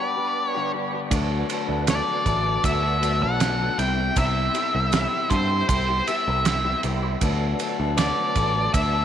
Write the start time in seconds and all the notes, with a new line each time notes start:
Already playing: G3 B3 B4 D5 G5 B5
0.00 D4 G4 D5
0.16 G3 B3 D4 G4
0.49 C#5
0.55 G2 D3 G3 B3 D4 G4
0.73 G3 B3 D4 G4
0.93 G3 B3 D4 G4
1.11 D2 D3 F#3 A3 B3 A4 B4 F#5 A5, kick, ride, maracas
1.50 F#3 A3 B3 A4, ride, maracas
1.69 D2 A3 B3 A4
1.87 D3 F#3 A3 B3 A4 D5, snare, ride, maracas
2.25 A1 F#3 A3 B3 A4, kick, ride, maracas
2.44 A3 B3 A4
2.64 D2 E5, kick, ride, maracas
2.81 A3 B3 A4
3.01 F#3 A3 B3 A4, ride, maracas
3.20 B1 A3 B3 A4 F#5
3.40 snare, ride, maracas
3.58 D3 F#3 A3 B3 A4
3.77 C2 C3 G3 B3 E4 G4 E5 G5 B5 C6, ride, maracas
3.96 B3 E4 G4
4.16 C2 C3 G3 B3 E4 G4 E5, kick, ride, maracas
4.54 G3 B3 E4 G4, ride, maracas
4.73 C2 B3 E4 G4
4.92 C3 G3 B3 E4 G4, snare, ride, maracas
5.30 G2 G3 B3 E4 G4 C5, kick, ride, maracas
5.50 B3 E4 G4
5.69 C2 C5, kick, ride, maracas
5.88 B3 E4 G4
6.07 G3 B3 E4 G4 E5, ride, maracas
6.26 C2 B3 E4 G4
6.45 snare, ride, maracas
6.64 C3 G3 B3 E4 G4
6.83 C2 G3 B3 E4 G4, ride, maracas
7.03 B3 E4 G4
7.21 D2 D3 F#3 A3 B3 A4 B4 D5 A5, kick, ride, maracas
7.59 F#3 A3 B3 A4, ride, maracas
7.80 D2 A3 B3 A4
7.98 D3 F#3 A3 B3 A4 D5, snare, ride, maracas
8.36 A1 F#3 A3 B3 A4, kick, ride, maracas
8.55 A3 B3 A4
8.74 D2 E5, kick, ride, maracas
8.93 A3 B3 A4